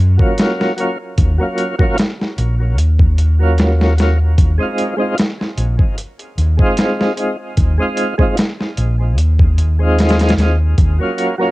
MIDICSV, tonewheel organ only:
0, 0, Header, 1, 2, 480
1, 0, Start_track
1, 0, Tempo, 800000
1, 709, Time_signature, 4, 2, 24, 8
1, 6907, End_track
2, 0, Start_track
2, 0, Title_t, "Tonewheel organ"
2, 0, Program_c, 0, 16
2, 105, Note_on_c, 0, 54, 72
2, 110, Note_on_c, 0, 58, 58
2, 119, Note_on_c, 0, 61, 64
2, 129, Note_on_c, 0, 65, 74
2, 436, Note_off_c, 0, 54, 0
2, 438, Note_off_c, 0, 58, 0
2, 442, Note_off_c, 0, 61, 0
2, 448, Note_off_c, 0, 65, 0
2, 460, Note_on_c, 0, 54, 66
2, 470, Note_on_c, 0, 58, 59
2, 480, Note_on_c, 0, 61, 58
2, 485, Note_on_c, 0, 65, 75
2, 578, Note_off_c, 0, 54, 0
2, 583, Note_off_c, 0, 58, 0
2, 588, Note_off_c, 0, 61, 0
2, 590, Note_off_c, 0, 65, 0
2, 829, Note_on_c, 0, 54, 78
2, 838, Note_on_c, 0, 58, 75
2, 846, Note_on_c, 0, 61, 70
2, 855, Note_on_c, 0, 65, 87
2, 1042, Note_off_c, 0, 54, 0
2, 1046, Note_off_c, 0, 58, 0
2, 1051, Note_off_c, 0, 61, 0
2, 1055, Note_off_c, 0, 65, 0
2, 1072, Note_on_c, 0, 54, 97
2, 1081, Note_on_c, 0, 58, 91
2, 1087, Note_on_c, 0, 61, 88
2, 1097, Note_on_c, 0, 65, 109
2, 1173, Note_off_c, 0, 54, 0
2, 1177, Note_off_c, 0, 58, 0
2, 1181, Note_off_c, 0, 61, 0
2, 1185, Note_off_c, 0, 65, 0
2, 2034, Note_on_c, 0, 54, 71
2, 2040, Note_on_c, 0, 58, 64
2, 2050, Note_on_c, 0, 61, 61
2, 2059, Note_on_c, 0, 65, 72
2, 2360, Note_off_c, 0, 54, 0
2, 2363, Note_off_c, 0, 58, 0
2, 2368, Note_off_c, 0, 61, 0
2, 2373, Note_off_c, 0, 65, 0
2, 2385, Note_on_c, 0, 54, 68
2, 2394, Note_on_c, 0, 58, 62
2, 2402, Note_on_c, 0, 61, 60
2, 2414, Note_on_c, 0, 65, 76
2, 2500, Note_off_c, 0, 54, 0
2, 2505, Note_off_c, 0, 58, 0
2, 2509, Note_off_c, 0, 61, 0
2, 2515, Note_off_c, 0, 65, 0
2, 2748, Note_on_c, 0, 56, 79
2, 2755, Note_on_c, 0, 60, 70
2, 2763, Note_on_c, 0, 63, 70
2, 2776, Note_on_c, 0, 65, 89
2, 2962, Note_off_c, 0, 56, 0
2, 2965, Note_off_c, 0, 60, 0
2, 2969, Note_off_c, 0, 63, 0
2, 2975, Note_off_c, 0, 65, 0
2, 2980, Note_on_c, 0, 56, 99
2, 2988, Note_on_c, 0, 60, 93
2, 2998, Note_on_c, 0, 63, 89
2, 3008, Note_on_c, 0, 65, 108
2, 3087, Note_off_c, 0, 56, 0
2, 3091, Note_off_c, 0, 60, 0
2, 3096, Note_off_c, 0, 63, 0
2, 3101, Note_off_c, 0, 65, 0
2, 3944, Note_on_c, 0, 56, 75
2, 3952, Note_on_c, 0, 60, 67
2, 3961, Note_on_c, 0, 63, 64
2, 3971, Note_on_c, 0, 65, 78
2, 4275, Note_off_c, 0, 56, 0
2, 4279, Note_off_c, 0, 60, 0
2, 4284, Note_off_c, 0, 63, 0
2, 4288, Note_off_c, 0, 65, 0
2, 4293, Note_on_c, 0, 56, 64
2, 4302, Note_on_c, 0, 60, 65
2, 4312, Note_on_c, 0, 63, 63
2, 4320, Note_on_c, 0, 65, 75
2, 4414, Note_off_c, 0, 56, 0
2, 4419, Note_off_c, 0, 60, 0
2, 4424, Note_off_c, 0, 63, 0
2, 4428, Note_off_c, 0, 65, 0
2, 4667, Note_on_c, 0, 56, 81
2, 4676, Note_on_c, 0, 60, 71
2, 4682, Note_on_c, 0, 63, 74
2, 4692, Note_on_c, 0, 65, 87
2, 4881, Note_off_c, 0, 56, 0
2, 4886, Note_off_c, 0, 60, 0
2, 4889, Note_off_c, 0, 63, 0
2, 4893, Note_off_c, 0, 65, 0
2, 4907, Note_on_c, 0, 56, 103
2, 4916, Note_on_c, 0, 60, 91
2, 4925, Note_on_c, 0, 63, 92
2, 4934, Note_on_c, 0, 65, 107
2, 5011, Note_off_c, 0, 56, 0
2, 5015, Note_off_c, 0, 60, 0
2, 5019, Note_off_c, 0, 63, 0
2, 5024, Note_off_c, 0, 65, 0
2, 5873, Note_on_c, 0, 56, 68
2, 5879, Note_on_c, 0, 60, 66
2, 5888, Note_on_c, 0, 63, 64
2, 5898, Note_on_c, 0, 65, 80
2, 6200, Note_off_c, 0, 56, 0
2, 6203, Note_off_c, 0, 60, 0
2, 6207, Note_off_c, 0, 63, 0
2, 6212, Note_off_c, 0, 65, 0
2, 6226, Note_on_c, 0, 56, 65
2, 6234, Note_on_c, 0, 60, 59
2, 6245, Note_on_c, 0, 63, 58
2, 6254, Note_on_c, 0, 65, 69
2, 6341, Note_off_c, 0, 56, 0
2, 6345, Note_off_c, 0, 60, 0
2, 6350, Note_off_c, 0, 63, 0
2, 6355, Note_off_c, 0, 65, 0
2, 6591, Note_on_c, 0, 54, 71
2, 6598, Note_on_c, 0, 58, 74
2, 6606, Note_on_c, 0, 61, 67
2, 6616, Note_on_c, 0, 65, 81
2, 6803, Note_off_c, 0, 54, 0
2, 6807, Note_off_c, 0, 58, 0
2, 6811, Note_off_c, 0, 61, 0
2, 6816, Note_off_c, 0, 65, 0
2, 6828, Note_on_c, 0, 54, 91
2, 6836, Note_on_c, 0, 58, 88
2, 6846, Note_on_c, 0, 61, 84
2, 6854, Note_on_c, 0, 65, 100
2, 6907, Note_off_c, 0, 54, 0
2, 6907, Note_off_c, 0, 58, 0
2, 6907, Note_off_c, 0, 61, 0
2, 6907, Note_off_c, 0, 65, 0
2, 6907, End_track
0, 0, End_of_file